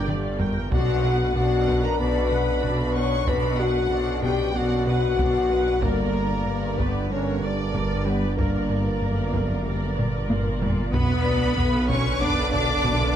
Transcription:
Already playing: sub bass G1, trombone section G2 D3
0.08 double bass section G1, cello section G2, analog synth bass G2, viola section G4 D5, taiko mid
0.40 analog synth bass G3, viola section A#4 G5, taiko low
0.71 double bass section B1, sub bass B1, trombone section F#2 D4, analog synth bass B2, cello section B2, french horn section F#4, viola section F#4 D5, violin section F#5, taiko
1.04 analog synth bass B2, viola section B4 F#5
1.36 double bass section B1, analog synth bass B2, cello section B2, french horn section F#4, viola section F#4 D5, violin section F#5
1.68 analog synth bass B2, viola section B4 F#5, taiko
1.84 french horn section A#4, violin section A#5
1.99 double bass section B1, cello section B2, analog synth bass B3, viola section F#4 D5, french horn section B4, violin section B5
2.32 analog synth bass B2, viola section B4 F#5
2.63 double bass section B1, cello section B2, analog synth bass B2, viola section F#4 D5, taiko
2.95 analog synth bass B3, viola section B4 F#5, french horn section C#5, violin section C#6
3.27 double bass section B1, analog synth bass B2, cello section B2, viola section F#4 D5, french horn section B4, violin section B5, taiko
3.59 analog synth bass B2, french horn section F#4, viola section B4 F#5, violin section F#5
3.91 double bass section B1, cello section B2, analog synth bass B2, viola section F#4 D5
4.23 analog synth bass B2, french horn section G4, viola section B4 D5, violin section G5, taiko
4.55 double bass section B1, cello section B2, analog synth bass B3, viola section F#4 D5, french horn section F#4, violin section F#5
4.86 analog synth bass B2, french horn section F#4, viola section B4 F#5, violin section F#5
5.18 double bass section B1, cello section B2, analog synth bass B2, viola section F#4 D5, taiko
5.50 analog synth bass B3, viola section B4 F#5
5.82 double bass section G1, sub bass G1, analog synth bass G2, cello section G2, trombone section G2 D3, french horn section A#3, viola section A#4 D5, violin section A#4, taiko
6.14 analog synth bass G2, viola section A#4 D5
6.46 double bass section G1, analog synth bass G2, cello section G2, viola section A#4 D5
6.77 analog synth bass G2, french horn section B3, viola section G4 D5, violin section B4, taiko
7.09 double bass section G1, cello section G2, analog synth bass G3, french horn section C#4, viola section D4 A#4, violin section C#5
7.42 analog synth bass G2, french horn section D4, viola section A#4 D5, violin section D5
7.74 double bass section G1, analog synth bass G2, cello section G2, viola section A#4 D5, taiko
8.05 analog synth bass G3, french horn section B3, viola section G4 D5, violin section B4
8.38 double bass section G1, cello section G2, analog synth bass G2, french horn section A#3, violin section A#4, viola section A#4 D5, taiko
8.70 analog synth bass G2, viola section A#4 D5
9.02 double bass section G1, cello section F#2, analog synth bass G2, viola section A#4 D5
9.34 analog synth bass G2, viola section A#4 D5, taiko
9.66 double bass section G1, analog synth bass G3, viola section A#4 D5
9.98 cello section G2, analog synth bass G2, viola section A#4 D5, taiko low-mid
10.30 double bass section G1, analog synth bass G2, cello section A#2, viola section A#4 D5, taiko high
10.61 cello section A#2, analog synth bass G3, viola section A#4 D5, taiko low
10.93 sub bass B1, double bass section B1, trombone section F#2 D3, analog synth bass B2, french horn section B3, cello section B3, viola section B3 B4, violin section B4 B5, taiko, sub drop
11.26 analog synth bass B2, viola section D4 D5
11.57 double bass section B1, analog synth bass B2, viola section B3 B4, taiko low
11.89 analog synth bass B2, viola section D3 B4, cello section C#4, french horn section C#4, violin section C#5 C#6, taiko
12.21 double bass section B1, analog synth bass B3, viola section B3 B4, cello section D4, french horn section D4, violin section D5 D6, taiko low
12.53 analog synth bass B2, viola section D4 D5, cello section D4, french horn section D4, violin section D5 D6, taiko low
12.84 double bass section B1, analog synth bass B2, viola section B3 B4, taiko

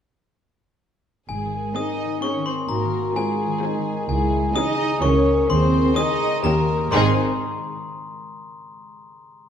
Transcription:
1.29 double bass section G#1, harp G#2, cello section G#3, violin section G#4, glockenspiel G#5
1.45 harp D#3
1.61 harp D#4
1.76 viola section D#3 C4, harp C#4, french horn section D#4, cello section D#4, violin section G#4 D#5, glockenspiel D#6
1.92 harp D#4
2.08 harp D#3
2.22 viola section D#3 C4, harp C4, cello section C#4, violin section G#4 C#5, glockenspiel C#6
2.39 harp D#3
2.46 cello section C4, violin section C5, glockenspiel C6
2.54 harp D#4
2.69 double bass section G#1, harp G#2, cello section A#3, french horn section F#4, violin section A#4, glockenspiel A#5
2.85 harp D#3
3.00 harp D#4
3.16 viola section D#3 C4, cello section G#3, harp C#4, french horn section F4, violin section G#4, glockenspiel G#5
3.32 harp D#4
3.47 harp D#3
3.63 viola section D#3 C4, harp C4, french horn section D#4, violin section G#4
3.78 harp D#3
3.94 harp D#4
4.09 double bass section C#2, harp C#3, cello section G#3, french horn section E4, violin section G#4, glockenspiel G#5
4.25 harp G#3
4.40 harp E4
4.56 viola section E3 C#4, cello section D#4, harp D#4, violin section G#4 D#5, french horn section G#4, glockenspiel D#6
4.71 harp E4
4.86 harp G#3
5.02 double bass section C#2, harp C#3, viola section E3 A#3, cello section C#4, violin section G#4 C#5, french horn section A#4, glockenspiel C#6
5.18 harp A#3
5.33 harp E4 G#4
5.49 double bass section D#2, harp D#3, cello section C4, french horn section G#4, violin section C5, glockenspiel C6
5.66 harp C4
5.81 harp G#4
5.96 viola section D#3 C4, cello section D#4, violin section G#4 D#5, glockenspiel D#6
6.13 harp G#4
6.28 harp C4
6.44 double bass section D#2, harp D#3, viola section D#3 C#4, cello section A#3, violin section G4 A#4, french horn section G4, glockenspiel A#5
6.60 harp C#4
6.76 harp D#4 G4
6.87 harp G#2 G#3 C4
6.92 double bass section G#1, viola section D#3 D#4, french horn section D#3 D#4, cello section C4, harp D#4 G#4 D#5, violin section G#4 C5, glockenspiel C6

